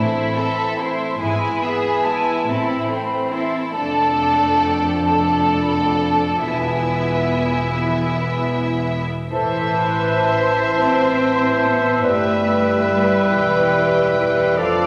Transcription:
0.00 1.04 A1 medium
0.00 1.04 A2 medium
0.00 3.72 E3 soft
0.00 0.35 A3 soft
0.00 1.18 C4 soft
0.00 0.34 E4 soft
0.00 0.32 C5 soft
0.00 0.79 B5 medium
0.35 0.79 C4 soft
0.35 0.79 A4 soft
0.35 0.78 E5 soft
0.77 1.21 A3 soft
0.77 1.20 E4 soft
0.77 1.20 C5 soft
0.77 1.20 C6 medium
1.19 2.31 G#1 medium
1.19 2.31 G#2 soft
1.19 1.61 G#3 soft
1.19 2.45 B3 soft
1.19 1.60 E4 soft
1.19 1.60 G#5 soft
1.19 2.03 B5 medium
1.61 2.07 B3 soft
1.61 2.05 G#4 soft
1.61 2.05 E5 soft
2.03 2.49 G#3 soft
2.03 2.47 E4 soft
2.03 2.48 G#5 soft
2.03 2.47 A5 medium
2.47 3.59 A1 medium
2.47 3.58 A2 medium
2.47 2.87 C4 soft
2.47 3.76 C4 soft
2.47 2.88 E4 soft
2.47 2.88 A4 soft
2.47 3.33 B5 medium
2.90 3.33 A3 soft
2.90 3.33 C4 soft
2.90 3.33 C5 soft
3.29 3.75 E4 soft
3.29 3.75 A4 soft
3.29 3.53 C6 medium
3.33 3.76 C4 soft
3.73 6.42 F1 soft
3.73 6.42 F2 soft
3.73 7.88 F3 soft
3.73 5.05 A3 soft
3.73 6.28 D4 soft
3.73 5.05 A4 soft
3.73 5.04 D5 soft
3.73 4.61 A5 medium
4.61 5.07 G5 medium
5.06 6.44 A3 soft
5.06 6.43 A4 soft
5.06 6.44 D5 soft
5.06 5.60 A5 soft
5.61 5.71 B5 soft
5.72 5.81 A5 soft
5.80 5.90 G5 soft
5.90 5.98 A5 soft
5.99 6.45 A5 medium
6.45 9.06 E1 soft
6.45 9.06 E2 soft
6.45 8.93 B3 soft
6.45 9.07 B3 soft
6.45 9.06 E4 soft
6.45 9.05 E5 soft
6.45 8.85 G#5 medium
7.88 8.97 E3 soft
9.28 12.00 A1 soft
9.28 10.69 E3 soft
9.28 14.54 E4 soft
9.28 9.74 A4 soft
9.28 11.99 C5 soft
9.28 11.98 E5 soft
9.28 11.99 A5 soft
9.32 12.00 E3 soft
9.32 12.00 C5 soft
9.32 14.59 E5 soft
9.78 10.25 B4 soft
10.26 12.03 C5 soft
10.73 11.61 C4 medium
11.62 12.04 B3 soft
12.03 13.28 G1 soft
12.03 14.60 G3 soft
12.03 12.89 A3 soft
12.03 14.54 G4 soft
12.03 14.54 B4 soft
12.03 14.58 B4 soft
12.03 14.55 B4 soft
12.03 13.29 E5 soft
12.03 14.54 G5 soft
12.89 13.31 G3 medium
13.29 14.55 E1 soft
13.29 14.14 E3 medium
13.29 14.54 G5 soft
14.15 14.57 E3 medium
14.57 14.87 F1 soft
14.57 14.87 F3 medium
14.57 14.87 F3 soft
14.57 14.87 D4 soft
14.57 14.87 F4 soft
14.57 14.87 A4 soft
14.57 14.87 D5 soft
14.57 14.87 F5 soft
14.57 14.87 A5 medium

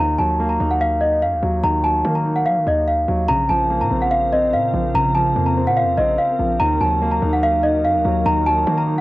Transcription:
0.00 0.18 D#2 loud
0.00 1.01 D#3 loud
0.00 0.17 A#5 medium
0.18 0.58 D#2 loud
0.18 1.22 F#3 medium
0.18 0.48 A5 medium
0.40 1.43 A#3 medium
0.49 0.69 A#5 medium
0.60 1.24 D#2 loud
0.60 1.00 D#4 medium
0.71 0.80 F#5 medium
0.81 1.00 F5 medium
1.01 2.05 D#4 medium
1.01 1.20 D#5 medium
1.22 1.34 F#2 loud
1.22 1.61 F5 medium
1.32 1.42 D#2 loud
1.43 1.63 D#2 loud
1.43 1.83 F#3 medium
1.63 2.03 D#2 loud
1.63 2.67 D#3 medium
1.63 1.83 A#5 loud
1.84 2.88 F#3 medium
1.84 2.13 A5 medium
2.04 2.48 D#3 loud
2.04 3.08 A#3 medium
2.15 2.34 A#5 medium
2.25 2.65 D#4 medium
2.36 2.45 F#5 medium
2.46 2.58 F#3 loud
2.46 2.65 F5 medium
2.57 2.66 D#3 loud
2.67 3.07 D#2 loud
2.67 3.29 D#4 medium
2.67 2.87 D#5 medium
2.88 3.27 F5 medium
3.08 3.28 D#2 loud
3.08 3.29 F#3 medium
3.29 3.49 A#1 loud
3.29 4.32 C#3 loud
3.29 6.57 C#3 medium
3.29 6.57 C4 medium
3.29 9.01 A#4 medium
3.29 3.48 A#5 loud
3.49 3.82 A#1 loud
3.49 4.53 F3 medium
3.49 3.79 A5 medium
3.70 4.74 A#3 medium
3.81 3.91 A#2 loud
3.81 4.00 A#5 medium
3.91 4.55 A#1 loud
3.91 4.31 C4 medium
4.02 4.11 F#5 medium
4.11 4.31 F5 medium
4.32 5.36 C4 medium
4.32 4.52 D#5 medium
4.53 4.73 A#2 loud
4.53 4.92 F5 medium
4.74 4.94 A#1 loud
4.74 5.13 F3 medium
4.94 5.34 A#1 loud
4.94 5.98 C#3 medium
4.94 5.14 A#5 loud
5.15 6.19 F3 medium
5.15 5.44 A5 medium
5.36 5.68 F2 loud
5.36 6.39 A#3 medium
5.46 5.65 A#5 medium
5.57 5.97 C4 medium
5.67 5.84 A#2 loud
5.67 5.77 F#5 medium
5.77 5.96 F5 medium
5.82 5.97 F2 loud
5.97 6.18 A#1 loud
5.97 6.60 C4 medium
5.97 6.17 D#5 medium
6.18 6.57 F5 medium
6.39 6.59 A#1 loud
6.39 6.60 F3 medium
6.60 6.80 D#2 loud
6.60 7.63 D#3 loud
6.60 9.01 F#3 medium
6.60 9.01 D#4 medium
6.60 6.79 A#5 loud
6.81 7.20 D#2 loud
6.81 7.84 F#3 medium
6.81 7.10 A5 medium
7.02 8.05 A#3 loud
7.11 7.31 A#5 medium
7.22 7.86 D#2 loud
7.22 7.62 D#4 medium
7.33 7.42 F#5 medium
7.43 7.62 F5 loud
7.63 8.67 D#4 medium
7.63 7.83 D#5 medium
7.84 7.96 F#2 loud
7.84 8.23 F5 medium
7.95 8.04 D#2 loud
8.05 8.25 D#2 loud
8.05 8.45 F#3 medium
8.26 8.65 D#2 loud
8.26 9.01 D#3 loud
8.26 8.45 A#5 loud
8.46 9.01 F#3 medium
8.46 8.75 A5 medium
8.67 9.01 D#3 loud
8.67 9.01 A#3 medium
8.78 8.97 A#5 medium
8.87 9.01 D#4 medium

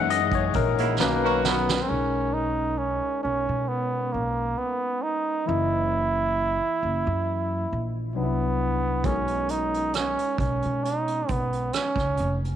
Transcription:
0.00 0.47 F#2 medium
0.00 0.25 E3 medium
0.00 0.96 E3 medium
0.00 0.25 G#3 medium
0.00 0.26 A#3 medium
0.00 0.96 A#3 medium
0.00 0.96 C#4 medium
0.00 0.26 D#4 medium
0.00 0.94 G#4 medium
0.00 0.10 D#5 medium
0.00 1.00 E5 medium
0.00 1.00 F#5 loud
0.10 0.35 D#5 loud
0.10 closed hi-hat medium
0.32 0.55 C#5 medium
0.32 kick medium
0.32 closed hi-hat soft
0.53 1.00 A#1 medium
0.53 1.01 A#4 medium
0.53 kick medium
0.53 closed hi-hat medium
0.78 0.95 C#3 medium
0.78 0.94 A#3 medium
0.78 0.94 E4 medium
0.78 closed hi-hat soft
0.99 1.79 B1 medium
0.99 1.87 B2 medium
0.99 1.87 D#3 medium
0.99 1.84 D#3 medium
0.99 1.84 F#3 soft
0.99 1.41 A#3 medium
0.99 1.87 C#4 medium
0.99 1.85 C#4 medium
0.99 1.87 A#4 medium
0.99 1.15 B4 medium
0.99 snare medium
1.16 1.23 B4 medium
1.23 1.53 D#3 medium
1.23 1.53 C#4 medium
1.23 1.53 F#4 medium
1.23 1.85 A#4 medium
1.44 1.84 B3 medium
1.44 snare medium
1.69 snare medium
1.82 1.91 C4 medium
1.87 2.99 B1 medium
1.87 5.42 G#3 medium
1.87 2.35 C#4 medium
1.87 5.43 C#4 soft
1.87 5.42 A#4 soft
1.91 5.44 D#4 medium
2.34 2.80 D#4 medium
2.78 3.23 C#4 medium
3.23 3.45 B1 medium
3.23 3.70 C#4 medium
3.49 4.16 B2 medium
3.68 4.14 B3 medium
4.12 4.53 B1 medium
4.12 4.59 A#3 medium
4.58 5.04 B3 medium
5.02 5.49 D#4 medium
5.45 6.57 F#1 medium
5.45 8.10 E3 soft
5.45 8.11 A#3 soft
5.45 7.90 E4 medium
5.45 8.12 D#5 soft
5.49 8.12 E4 medium
6.83 7.03 F#1 medium
7.07 7.64 F#2 medium
7.73 8.17 A#1 medium
8.15 9.05 C2 medium
8.15 9.04 F#3 soft
8.15 9.05 B3 soft
8.15 9.07 B3 medium
8.15 9.05 D4 soft
8.15 8.23 D#4 soft
8.23 9.09 E4 medium
9.03 10.15 B1 medium
9.03 12.56 G#3 medium
9.03 9.52 C#4 medium
9.03 12.56 C#4 medium
9.03 12.56 A#4 soft
9.03 kick medium
9.03 closed hi-hat medium
9.08 12.56 D#4 medium
9.27 closed hi-hat soft
9.49 9.97 D#4 medium
9.49 closed hi-hat medium
9.74 closed hi-hat soft
9.93 10.39 C#4 medium
9.93 cross-stick medium
9.93 closed hi-hat medium
10.18 closed hi-hat soft
10.38 10.61 B1 medium
10.38 10.86 C#4 medium
10.38 kick medium
10.38 closed hi-hat medium
10.62 11.22 B2 medium
10.62 closed hi-hat soft
10.84 11.31 D#4 medium
10.84 closed hi-hat medium
11.08 closed hi-hat soft
11.28 11.69 B1 medium
11.28 11.76 B3 medium
11.28 kick medium
11.28 closed hi-hat medium
11.53 closed hi-hat soft
11.73 12.38 C#4 medium
11.73 cross-stick medium
11.73 closed hi-hat medium
11.96 12.15 C#2 medium
11.96 kick medium
11.96 cross-stick soft
11.96 closed hi-hat soft
12.17 12.56 F1 medium
12.17 closed hi-hat medium
12.45 closed hi-hat soft

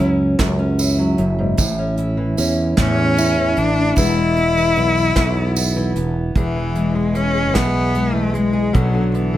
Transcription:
0.00 0.37 C#2 medium
0.00 0.38 F#2 medium
0.00 0.97 F#3 medium
0.00 0.58 C#4 medium
0.39 1.15 C#2 medium
0.39 1.17 F#2 medium
0.39 kick medium
0.39 snare medium
0.39 closed hi-hat medium
0.59 1.54 C#4 medium
0.78 1.98 E4 medium
0.78 closed hi-hat medium
0.78 tambourine medium
0.98 1.54 F#3 medium
1.18 1.57 F#1 medium
1.18 1.38 F#2 medium
1.18 closed hi-hat medium
1.38 1.59 G#2 medium
1.57 2.34 A1 medium
1.57 2.76 A2 medium
1.57 kick medium
1.57 closed hi-hat medium
1.57 tambourine medium
1.79 2.37 C#4 medium
1.97 3.17 E4 medium
1.97 closed hi-hat medium
2.17 3.37 E3 medium
2.37 2.76 E2 medium
2.37 2.97 C#4 medium
2.37 closed hi-hat medium
2.37 tambourine medium
2.77 3.54 E2 medium
2.77 3.97 A2 medium
2.77 3.60 C#4 loud
2.77 kick medium
2.77 snare medium
2.77 closed hi-hat medium
2.98 3.58 C#4 medium
3.17 6.36 E4 medium
3.17 closed hi-hat soft
3.17 tambourine medium
3.38 3.97 E3 medium
3.56 3.95 A1 medium
3.56 3.97 D4 loud
3.56 closed hi-hat soft
3.96 4.73 E1 medium
3.96 5.16 E2 medium
3.96 4.55 E3 medium
3.96 6.32 G#3 medium
3.96 4.16 B3 medium
3.96 5.93 E4 loud
3.96 kick medium
3.96 closed hi-hat medium
3.96 tambourine medium
4.17 4.37 B3 medium
4.36 4.76 B3 medium
4.36 closed hi-hat soft
4.57 5.75 E3 medium
4.57 tambourine soft
4.76 5.15 B1 medium
4.76 5.36 B3 medium
4.76 closed hi-hat soft
4.97 tambourine soft
5.16 5.92 B1 loud
5.16 6.35 E2 medium
5.16 kick medium
5.16 snare medium
5.16 closed hi-hat medium
5.37 5.56 B3 medium
5.56 5.95 B3 medium
5.56 closed hi-hat soft
5.56 tambourine medium
5.76 6.31 E3 medium
5.76 tambourine soft
5.96 6.34 E1 medium
5.96 8.73 B3 medium
5.96 closed hi-hat soft
6.35 7.55 E1 medium
6.35 7.53 E2 medium
6.35 6.97 E3 medium
6.35 7.33 G#4 medium
6.35 kick medium
6.35 closed hi-hat medium
6.55 6.94 E3 medium
6.75 7.14 G#3 soft
6.75 closed hi-hat soft
6.95 7.73 E3 medium
6.95 7.17 G#3 medium
7.15 7.93 G#3 medium
7.15 7.56 C#4 medium
7.15 closed hi-hat medium
7.35 7.53 G#4 medium
7.54 8.71 B1 medium
7.54 8.74 E2 medium
7.54 8.16 B3 medium
7.54 8.52 G#4 medium
7.54 kick medium
7.54 snare medium
7.54 closed hi-hat medium
7.74 8.12 E3 medium
7.95 8.32 G#3 medium
7.95 closed hi-hat soft
8.13 8.69 E3 medium
8.13 8.35 A3 medium
8.33 8.76 G#3 medium
8.33 8.70 G#3 medium
8.33 closed hi-hat soft
8.53 8.69 G#4 medium
8.73 9.37 B1 medium
8.73 8.94 B2 medium
8.73 8.92 D3 medium
8.73 9.17 F#3 medium
8.73 9.13 B3 medium
8.73 9.37 D4 medium
8.73 9.37 F#4 medium
8.73 kick medium
8.73 closed hi-hat medium
8.93 9.32 D3 medium
9.14 9.37 E3 medium
9.14 9.37 B3 medium
9.14 closed hi-hat soft
9.33 9.37 D3 medium

